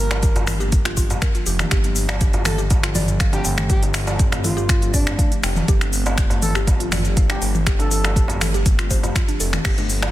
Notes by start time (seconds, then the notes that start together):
Already playing: G1 F3 A#3 D4 G4
0.00 A#4
0.11 D5, finger snap, closed hi-hat, darbuka tek, cabasa
0.23 G4, kick, closed hi-hat, cabasa
0.36 closed hi-hat, darbuka tek, darbuka dum, cabasa
0.47 A#4, finger snap, open hi-hat, mid tom, cabasa
0.60 G4, cabasa
0.72 kick, closed hi-hat, cabasa
0.85 F4, finger snap, closed hi-hat, cabasa
0.97 F4, kick, open hi-hat, cabasa
1.10 closed hi-hat, darbuka tek, darbuka dum, cabasa
1.22 A#4, finger snap, kick, closed hi-hat, cabasa
1.35 F4, closed hi-hat, cabasa
1.46 F1 G4, open hi-hat, cabasa
1.59 finger snap, closed hi-hat, mid tom, darbuka tek, cabasa
1.71 G1 A3 C4 G4, finger snap, kick, closed hi-hat, cabasa
1.84 D4, closed hi-hat, cabasa
1.96 open hi-hat, cabasa
2.09 D5, finger snap, darbuka tek, cabasa
2.21 G4, kick, closed hi-hat, cabasa
2.33 closed hi-hat, darbuka tek, darbuka dum, cabasa
2.45 A4, finger snap, open hi-hat, mid tom, cabasa
2.58 G4, cabasa
2.70 kick, closed hi-hat, darbuka tek, cabasa
2.83 F4, finger snap, closed hi-hat, cabasa
2.95 D5, open hi-hat, mid tom, darbuka dum, cabasa
3.08 closed hi-hat, cabasa
3.20 F5, finger snap, kick, closed hi-hat, cabasa
3.33 D4 G4, closed hi-hat, darbuka ka, cabasa
3.45 G1 G5, open hi-hat, cabasa
3.58 finger snap, mid tom, cabasa
3.69 G4, kick, closed hi-hat, cabasa
3.82 D4, closed hi-hat, darbuka ka, cabasa
3.94 finger snap, open hi-hat, cabasa
4.07 D5, closed hi-hat, darbuka tek, cabasa
4.19 G4, kick, closed hi-hat, cabasa
4.32 finger snap, closed hi-hat, darbuka tek, darbuka dum, cabasa
4.44 F4 A4, open hi-hat, mid tom, cabasa
4.57 G4, cabasa
4.69 finger snap, kick, closed hi-hat, cabasa
4.82 F4, closed hi-hat, cabasa
4.93 D4 D5, kick, open hi-hat, cabasa
5.07 finger snap, darbuka tek, darbuka dum, cabasa
5.18 F5, kick, closed hi-hat, cabasa
5.31 D4, closed hi-hat, cabasa
5.43 F1 G5, finger snap, open hi-hat, cabasa
5.56 mid tom, darbuka tek, cabasa
5.68 G1 G4, kick, closed hi-hat, cabasa
5.81 D4, finger snap, closed hi-hat, cabasa
5.93 open hi-hat, cabasa
6.06 D5, closed hi-hat, darbuka tek, cabasa
6.18 G4, finger snap, kick, closed hi-hat, cabasa
6.30 closed hi-hat, darbuka tek, darbuka dum, cabasa
6.42 A4, open hi-hat, mid tom, cabasa
6.55 G4, finger snap, cabasa
6.67 kick, closed hi-hat, darbuka tek, cabasa
6.80 F4, closed hi-hat, cabasa
6.92 D5, finger snap, open hi-hat, mid tom, darbuka dum, cabasa
7.05 closed hi-hat, cabasa
7.17 F5, kick, closed hi-hat, cabasa
7.30 D4 G4, finger snap, closed hi-hat, darbuka ka, cabasa
7.42 G1 G5, open hi-hat, cabasa
7.55 mid tom, cabasa
7.66 G4, finger snap, kick, closed hi-hat, cabasa
7.79 D4 A4, closed hi-hat, darbuka ka, cabasa
7.91 A4, open hi-hat, cabasa
8.04 D5, finger snap, closed hi-hat, darbuka tek, cabasa
8.16 G4, kick, closed hi-hat, cabasa
8.28 closed hi-hat, darbuka ka, darbuka tek, darbuka dum, cabasa
8.41 A4, finger snap, open hi-hat, mid tom, cabasa
8.54 G4, closed hi-hat, cabasa
8.66 kick, closed hi-hat, cabasa
8.79 F4, finger snap, closed hi-hat, cabasa
8.91 C5, kick, open hi-hat, darbuka tek, cabasa
9.03 F4, closed hi-hat, darbuka tek, darbuka dum, cabasa
9.15 F4, finger snap, kick, closed hi-hat, cabasa
9.28 D4, closed hi-hat, cabasa
9.40 F1 A4, open hi-hat, cabasa
9.53 finger snap, mid tom, darbuka tek, cabasa
9.65 G1 G4, finger snap, kick, closed hi-hat, crash, cabasa
9.78 D4, closed hi-hat, muted conga, high conga, cabasa
9.90 open hi-hat, cabasa
10.02 D5, finger snap, closed hi-hat, darbuka tek, cabasa